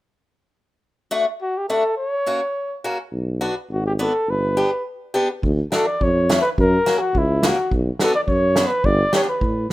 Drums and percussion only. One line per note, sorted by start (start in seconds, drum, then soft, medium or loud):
5.43 kick medium
5.72 snare medium
6.01 kick medium
6.30 snare medium
6.58 kick medium
6.87 snare medium
7.15 kick medium
7.43 snare medium
7.71 kick medium
7.99 snare medium
8.28 kick medium
8.56 snare medium
8.84 kick medium
9.13 snare medium
9.41 kick medium